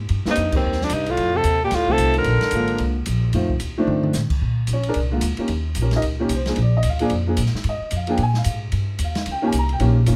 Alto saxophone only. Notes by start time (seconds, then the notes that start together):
0.31 D#4
0.57 C4
0.84 D4
0.94 D#4
1.11 F4
1.37 A4
1.65 G4
1.75 F4
1.92 A4
2.19 A#4